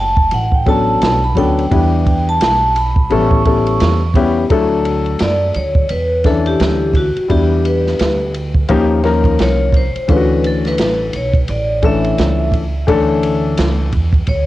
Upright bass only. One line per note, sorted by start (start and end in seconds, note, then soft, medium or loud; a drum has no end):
0.00 0.29 F#1 medium
0.32 0.98 A1 medium
1.02 1.35 B1 medium
1.35 1.69 D2 medium
1.72 2.38 E2 loud
2.41 3.08 B1 medium
3.11 3.77 A1 loud
3.81 4.47 E2 medium
4.50 5.17 D2 medium
5.21 5.54 F#2 medium
5.56 5.89 D2 medium
5.90 6.57 E2 medium
6.60 7.13 D2 loud
7.16 muted upright bass stroke soft
7.30 7.96 E2 medium
8.00 8.66 D2 medium
8.70 9.36 D#2 loud
9.39 9.92 C2 medium
9.96 muted upright bass stroke soft
10.09 10.75 D2 loud
10.79 11.12 A1 medium
11.14 11.47 B1 medium
11.49 12.15 A1 medium
12.19 12.85 C#2 medium
12.88 13.54 D2 medium
13.58 13.91 C#2 medium
13.93 14.26 E2 medium
14.28 14.46 D2 medium